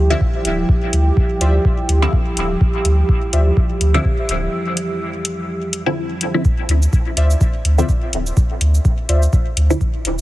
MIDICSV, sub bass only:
0, 0, Header, 1, 2, 480
1, 0, Start_track
1, 0, Key_signature, -1, "minor"
1, 0, Tempo, 480000
1, 689, Time_signature, 4, 2, 24, 8
1, 10211, End_track
2, 0, Start_track
2, 0, Title_t, "Sub bass"
2, 0, Program_c, 0, 38
2, 0, Note_on_c, 0, 38, 91
2, 151, Note_off_c, 0, 38, 0
2, 450, Note_on_c, 0, 26, 106
2, 631, Note_off_c, 0, 26, 0
2, 930, Note_on_c, 0, 38, 100
2, 1111, Note_off_c, 0, 38, 0
2, 1409, Note_on_c, 0, 38, 89
2, 1591, Note_off_c, 0, 38, 0
2, 1889, Note_on_c, 0, 38, 91
2, 2071, Note_off_c, 0, 38, 0
2, 2369, Note_on_c, 0, 26, 107
2, 2551, Note_off_c, 0, 26, 0
2, 2849, Note_on_c, 0, 38, 102
2, 3031, Note_off_c, 0, 38, 0
2, 3330, Note_on_c, 0, 38, 92
2, 3511, Note_off_c, 0, 38, 0
2, 3809, Note_on_c, 0, 38, 91
2, 3991, Note_off_c, 0, 38, 0
2, 4289, Note_on_c, 0, 26, 106
2, 4471, Note_off_c, 0, 26, 0
2, 6690, Note_on_c, 0, 38, 100
2, 6871, Note_off_c, 0, 38, 0
2, 7169, Note_on_c, 0, 38, 96
2, 7351, Note_off_c, 0, 38, 0
2, 7649, Note_on_c, 0, 38, 94
2, 7831, Note_off_c, 0, 38, 0
2, 8130, Note_on_c, 0, 26, 107
2, 8311, Note_off_c, 0, 26, 0
2, 8610, Note_on_c, 0, 38, 101
2, 8791, Note_off_c, 0, 38, 0
2, 9089, Note_on_c, 0, 38, 91
2, 9271, Note_off_c, 0, 38, 0
2, 9569, Note_on_c, 0, 38, 92
2, 9751, Note_off_c, 0, 38, 0
2, 10050, Note_on_c, 0, 26, 106
2, 10211, Note_off_c, 0, 26, 0
2, 10211, End_track
0, 0, End_of_file